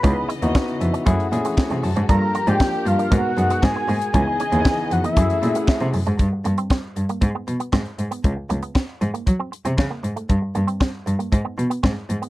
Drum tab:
HH |x-xx-xxxxxxx-xox|x-xx--xxx-xx--ox|x-xx--xxxxxx-xox|x-xx--xxx-xx-xxx|
CP |----x-------x---|----x-------x---|----x-------x---|----x-------x---|
SD |----o-------o---|----o-------o---|----o-------o---|----o-------o---|
BD |o---o---o---o---|o---o---o---o---|o---o---o---o---|o---o---o---o---|

HH |x-xx--xxx-xx--xx|x-xx--xxx-xx--xx|
CP |----x-------x---|----x-------x---|
SD |----o-------o---|----o-------o---|
BD |o---o---o---o---|o---o---o---o---|